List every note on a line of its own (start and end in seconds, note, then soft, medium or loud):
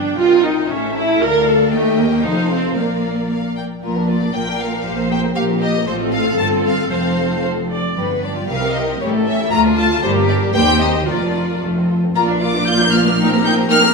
0.00 0.15 G1 soft
0.00 0.15 G2 soft
0.00 0.18 D4 medium
0.00 0.14 G4 soft
0.00 0.14 D5 soft
0.00 0.66 G5 soft
0.18 0.69 C2 soft
0.18 0.69 C3 soft
0.18 0.44 F4 medium
0.18 0.70 A#4 soft
0.18 0.69 D#5 soft
0.44 0.70 D#4 medium
0.69 1.20 A1 medium
0.69 1.20 A2 medium
0.69 0.95 C#4 medium
0.69 1.72 A4 soft
0.69 1.21 E5 soft
0.96 1.21 E4 medium
1.20 1.71 D2 medium
1.20 1.72 D2 medium
1.20 1.47 A#4 medium
1.20 1.72 D5 medium
1.20 1.71 F5 medium
1.47 1.73 A4 medium
1.72 2.24 D#2 medium
1.72 1.97 A3 medium
1.72 2.23 G4 soft
1.72 2.24 D#5 soft
1.72 2.23 G5 soft
1.98 2.24 A#3 medium
2.23 2.77 F1 medium
2.23 2.77 F2 medium
2.23 2.50 D#4 medium
2.23 2.76 A4 medium
2.23 2.77 C5 medium
2.23 2.74 F5 medium
2.50 2.76 C4 medium
2.76 3.63 A#1 soft
2.76 3.63 A#2 soft
2.76 3.30 A#3 medium
2.76 3.63 A#4 soft
2.76 3.61 D5 soft
2.76 3.23 F5 soft
3.30 3.54 F5 soft
3.56 3.64 G5 soft
3.83 4.29 A#1 medium
3.83 4.28 A#2 medium
3.83 3.95 A#3 soft
3.83 3.95 F4 soft
3.83 4.07 A#4 medium
3.95 4.09 D4 soft
3.95 4.09 A#4 soft
4.08 4.21 A#3 soft
4.08 4.21 F4 soft
4.08 4.34 D5 medium
4.21 4.35 D4 soft
4.21 4.34 A#4 soft
4.34 4.80 A#1 medium
4.34 4.80 A#2 medium
4.34 4.46 A#3 soft
4.34 4.46 F4 soft
4.34 4.82 A#4 medium
4.34 4.60 G5 medium
4.47 4.60 D4 soft
4.47 4.60 A#4 soft
4.60 4.73 A#3 soft
4.60 4.73 F4 soft
4.60 5.11 F5 medium
4.72 4.85 D4 soft
4.72 4.85 A#4 soft
4.85 5.30 A#1 medium
4.85 5.30 A#2 medium
4.85 4.97 A#3 soft
4.85 4.97 G4 soft
4.85 5.35 C5 medium
4.97 5.11 C4 soft
4.97 5.11 A#4 soft
5.10 5.23 A#3 soft
5.10 5.23 G4 medium
5.10 5.19 G5 medium
5.23 5.36 C4 soft
5.23 5.36 A#4 soft
5.35 5.81 A#1 medium
5.35 5.81 A#2 medium
5.35 5.48 A#3 soft
5.35 5.48 G4 medium
5.35 5.86 G4 medium
5.35 5.43 F5 medium
5.49 5.62 C4 medium
5.49 5.62 A#4 medium
5.61 5.74 A#3 soft
5.61 5.74 G4 medium
5.61 5.86 D#5 medium
5.75 5.87 C4 medium
5.75 5.88 A#4 medium
5.87 6.35 A1 medium
5.87 6.35 A2 medium
5.87 6.35 C4 medium
5.87 6.35 F4 medium
5.87 6.88 A4 medium
5.87 5.95 C5 medium
6.13 6.38 F5 medium
6.38 6.89 G1 medium
6.38 6.89 G2 medium
6.38 6.90 C4 medium
6.38 6.90 F4 medium
6.38 6.46 A5 loud
6.64 6.90 F5 medium
6.91 7.74 F1 medium
6.91 7.74 F2 medium
6.91 7.74 C4 medium
6.91 7.76 A4 medium
6.91 7.38 C5 medium
6.91 7.43 F5 medium
7.44 7.52 C5 medium
7.71 7.96 D5 medium
7.96 8.40 G1 medium
7.96 8.40 G2 medium
7.96 8.09 G3 medium
7.96 9.48 G4 medium
7.96 8.21 B4 medium
8.10 8.23 B3 soft
8.23 8.36 D4 medium
8.23 8.49 D5 medium
8.35 8.48 F4 soft
8.47 8.92 C2 medium
8.47 8.92 C3 medium
8.47 8.60 G3 medium
8.47 8.97 A#4 medium
8.47 8.74 F5 medium
8.61 8.74 C4 medium
8.74 8.88 D#4 medium
8.74 9.00 D#5 medium
8.88 9.01 C4 soft
9.00 9.43 A1 medium
9.00 9.43 A2 medium
9.00 9.13 G3 medium
9.00 9.52 A4 medium
9.00 9.09 C#5 medium
9.15 9.27 A3 medium
9.27 9.40 C#4 medium
9.27 9.52 E5 medium
9.40 9.52 E4 medium
9.51 9.95 D2 medium
9.51 9.63 A3 medium
9.51 10.02 F4 medium
9.51 10.03 A4 medium
9.51 9.59 A#5 loud
9.65 9.77 D4 medium
9.78 9.90 F4 medium
9.78 10.03 A5 loud
9.90 10.03 D4 medium
10.02 10.46 G1 medium
10.02 10.46 G2 medium
10.02 10.15 G3 medium
10.02 10.54 G4 medium
10.02 10.55 A#4 medium
10.02 10.10 C5 medium
10.16 10.29 A#3 medium
10.29 10.42 D4 medium
10.29 10.37 D5 medium
10.42 10.55 G4 medium
10.54 10.99 D#2 medium
10.54 10.67 G3 medium
10.54 11.07 G4 medium
10.54 11.08 C5 medium
10.54 10.80 G5 loud
10.68 10.81 C4 medium
10.81 10.95 D#4 medium
10.81 11.08 D#5 medium
10.95 11.08 G4 medium
11.07 11.53 F1 medium
11.07 11.53 F2 medium
11.07 11.21 A#3 soft
11.07 11.89 F4 medium
11.07 11.61 A#4 soft
11.07 11.60 D5 medium
11.22 11.35 D4 soft
11.36 11.49 F4 soft
11.50 11.63 D4 soft
11.62 12.07 F1 medium
11.62 12.07 F2 soft
11.62 11.75 A3 soft
11.62 11.95 A4 soft
11.77 11.90 C4 soft
11.89 12.02 F4 soft
12.03 12.16 C4 soft
12.15 13.94 A#1 medium
12.15 13.94 A#2 medium
12.15 12.27 A#3 medium
12.15 12.27 F4 medium
12.15 12.28 D5 medium
12.15 12.28 F5 medium
12.15 12.23 A#5 medium
12.29 12.41 D4 medium
12.29 12.42 A#4 medium
12.29 12.42 D5 medium
12.41 12.54 A#3 medium
12.41 12.55 F4 medium
12.41 12.55 D5 medium
12.41 12.55 F5 medium
12.41 12.67 D6 medium
12.55 12.67 D4 medium
12.55 12.68 A#4 medium
12.55 12.67 D5 medium
12.66 12.79 A#3 medium
12.66 12.79 F4 medium
12.66 12.80 D5 medium
12.66 12.80 F5 medium
12.66 12.93 G6 loud
12.80 12.93 D4 medium
12.80 12.94 A#4 medium
12.80 12.94 D5 medium
12.93 13.06 A#3 medium
12.93 13.06 F4 medium
12.93 13.06 D5 medium
12.93 13.07 F5 medium
12.93 13.45 F6 medium
13.06 13.19 D4 medium
13.06 13.19 A#4 medium
13.06 13.19 D5 medium
13.18 13.30 A#3 medium
13.18 13.30 D#4 medium
13.18 13.32 A#4 medium
13.18 13.32 G5 medium
13.31 13.43 A#3 medium
13.31 13.44 C4 medium
13.31 13.46 G4 medium
13.31 13.45 A#5 medium
13.44 13.56 A#3 medium
13.44 13.57 D#4 medium
13.44 13.58 A#4 medium
13.44 13.58 G5 medium
13.44 13.53 G6 loud
13.57 13.68 A#3 medium
13.57 13.70 C4 medium
13.57 13.71 G4 medium
13.57 13.71 A#5 medium
13.69 13.81 A#3 medium
13.69 13.82 D#4 medium
13.69 13.82 A#4 medium
13.69 13.82 G5 medium
13.69 13.94 F6 loud
13.82 13.94 A#3 medium
13.82 13.94 C4 medium
13.82 13.94 G4 medium
13.82 13.94 A#5 medium